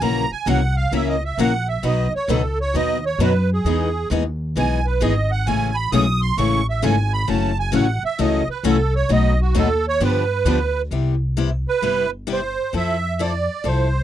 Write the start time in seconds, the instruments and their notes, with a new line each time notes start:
0.00 upright bass A#1, steel-string acoustic guitar C#3 E3 F#3 A#3 C#4 E4 F#4 A#4, accordion A#5
0.31 accordion G#5, muted upright bass stroke
0.46 upright bass C2, steel-string acoustic guitar C#3 E3 F#3 A#3 C#4 E4 F#4 A#4, accordion F#5
0.77 accordion F5
0.92 upright bass C#2, steel-string acoustic guitar C#3 E3 F#3 A#3 C#4 E4 F#4 A#4, accordion E5
1.09 accordion D#5
1.25 accordion E5
1.37 upright bass A#1, steel-string acoustic guitar C#3 E3 F#3 A#3 C#4 E4 F#4 A#4, accordion F#5
1.68 accordion E5
1.83 upright bass B1, steel-string acoustic guitar B2 D#3 F#3 B3 D#4 F#4 B4, accordion D#5
2.13 accordion C#5, muted upright bass stroke
2.28 upright bass C#2, steel-string acoustic guitar B2 D#3 F#3 B3 D#4 F#4 B4, accordion A4
2.61 accordion C#5
2.74 upright bass D#2, steel-string acoustic guitar B2 D#3 F#3 B3 D#4 F#4 B4, accordion D#5
3.06 accordion C#5
3.18 upright bass F#2, steel-string acoustic guitar B2 D#3 F#3 B3 D#4 F#4 B4
3.22 accordion B4
3.53 accordion G#4
3.64 upright bass E2, steel-string acoustic guitar E3 G#3 B3 D#4 G#4
4.10 upright bass D#2, steel-string acoustic guitar E3 G#3 B3 D#4 G#4
4.56 upright bass B1, steel-string acoustic guitar E3 G#3 B3 D#4 G#4, accordion G#5
4.86 accordion B4
5.01 upright bass G#1, steel-string acoustic guitar E3 G#3 B3 D#4 G#4, accordion D#5
5.31 accordion F#5
5.47 upright bass A1, steel-string acoustic guitar C#3 E3 G#3 A3 C#4 E4 G#4 A4, accordion G#5
5.75 accordion B5
5.92 upright bass B1, steel-string acoustic guitar C#3 E3 G#3 A3 C#4 E4 G#4 A4, accordion D#6
6.22 accordion C6
6.37 upright bass A1, steel-string acoustic guitar C#3 E3 G#3 A3 C#4 E4 G#4 A4, accordion C#6
6.70 accordion E5
6.82 upright bass G#1, steel-string acoustic guitar C#3 E3 G#3 A3 C#4 E4 G#4 A4, accordion G#5
7.13 accordion B5
7.27 upright bass F#1, steel-string acoustic guitar C#3 E3 F#3 A3 C#4 E4 F#4 A4, accordion A5
7.60 accordion G#5
7.72 upright bass A1, steel-string acoustic guitar C#3 E3 F#3 A3 C#4 E4 F#4 A4, accordion F#5
8.03 accordion E5, muted upright bass stroke
8.19 upright bass C#2, steel-string acoustic guitar C#3 E3 F#3 A3 C#4 E4 F#4 A4, accordion D#5
8.48 accordion B4, muted upright bass stroke
8.63 upright bass C2, steel-string acoustic guitar C#3 E3 F#3 A3 C#4 E4 F#4 A4, accordion A4
8.96 accordion C#5
9.09 upright bass B1, steel-string acoustic guitar B2 F#3 A3 D#4 F#4 B4, accordion D#5
9.41 accordion F#4
9.55 upright bass D#2, steel-string acoustic guitar B2 F#3 A3 D#4 F#4 B4, accordion A4
9.88 accordion C#5
10.00 upright bass G2, steel-string acoustic guitar D3 F3 B3 D4 G4
10.05 accordion B4
10.45 upright bass D2, steel-string acoustic guitar D3 F3 B3 D4 G4
10.91 upright bass C2, steel-string acoustic guitar C3 G3 B3 E4 G4
11.37 steel-string acoustic guitar C3 G3 B3 E4 G4
11.69 accordion B4
11.82 upright bass G1, steel-string acoustic guitar C3 G3 B3 E4 G4
12.27 steel-string acoustic guitar C3 G3 B3 E4 G4
12.33 accordion C5
12.73 upright bass F2, steel-string acoustic guitar F3 C4 E4 A4, accordion E5
13.19 steel-string acoustic guitar F3 C4 E4 A4, accordion D5
13.64 upright bass C2, steel-string acoustic guitar F3 C4 E4 A4
13.68 accordion C5